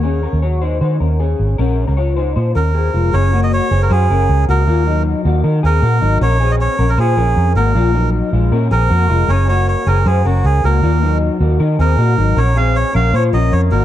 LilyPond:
<<
  \new Staff \with { instrumentName = "Melodica" } { \time 4/4 \key bes \minor \tempo 4 = 156 r1 | r2 r8 bes'4. | des''8. ees''16 des''8. bes'16 aes'4. bes'8~ | bes'4 r4. bes'4. |
des''8. ees''16 des''8. bes'16 aes'4. bes'8~ | bes'4 r4. bes'4. | des''8 des''8 des''8 bes'8 aes'8 ges'8 aes'8 bes'8~ | bes'4 r4. bes'4. |
des''8 f''8 des''8 f''8 des''8 ees''8 des''8 bes'8 | }
  \new Staff \with { instrumentName = "Clean electric guitar" } { \time 4/4 \key bes \minor <des' aes'>8 <des' bes'>8 <ges' des''>8 <ees' c''>8 <ees' c''>8 <des' bes'>8 <des' aes'>4 | <des' bes'>8. <des' bes'>16 <f' des''>8 <ees' c''>8 <f' c''>8 <des' bes'>8 <c' aes'>8 <aes f'>8 | <des' aes'>8 <bes ges'>4 <c' aes'>8 <ges' c''>8 <des' bes'>4 <bes ges'>8 | <bes f'>8 <ges ees'>4 <bes ges'>8 <ees' bes'>8 <c' aes'>8 <bes ges'>8 <ges ees'>8 |
<des' bes'>8 <c' aes'>4 <des' bes'>8 <f' c''>8 <des' bes'>4 <bes ges'>8 | <bes f'>8 <ges ees'>4 <aes f'>8 <des' bes'>8 <c' aes'>8 <bes ges'>8 <aes f'>8 | <des' aes'>8 <bes ges'>4 <c' aes'>8 <ges' c''>8 <des' bes'>4 <bes ges'>8 | <bes f'>8 <ges ees'>4 <bes ges'>8 <ees' bes'>8 <c' aes'>8 <bes ges'>8 <ges ees'>8 |
<des' bes'>8 <c' aes'>4 <des' bes'>8 <f' c''>8 <des' bes'>4 <bes ges'>8 | }
  \new Staff \with { instrumentName = "Fingered electric bass" } { \clef bass \time 4/4 \key bes \minor ees,8. ees,4~ ees,16 ees8 ees,4 aes,,8 | bes,,8. des,4~ des,16 bes,8 ees,4 f,,8 | ges,,4~ ges,,16 r16 ges,,8 ges,8 ges,,8 des,8 des,8 | ees,4~ ees,16 r16 ees,8 ees8 ees,8 bes,8 aes,,8 |
bes,,4~ bes,,16 r16 bes,,8 bes,8 bes,,8 f,8 aes,,8 | bes,,4~ bes,,16 r16 bes,,8 bes,8 bes,,8 f,8 f,,8 | ges,,4~ ges,,16 r16 ges,,8 ges,8 ges,,8 des,8 des,8 | ees,4~ ees,16 r16 ees,8 ees8 ees,8 bes,8 aes,,8 |
bes,,4~ bes,,16 r16 bes,,8 bes,8 bes,,8 f,8 aes,,8 | }
>>